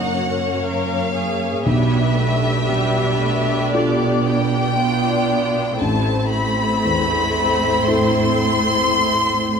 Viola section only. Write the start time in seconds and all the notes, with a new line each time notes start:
Already playing: A#3 D#4
0.11 C#4
1.65 B3 D4
2.17 A3
2.69 G3
3.22 A3
3.74 B3
4.79 B3 D4
5.81 A3 C4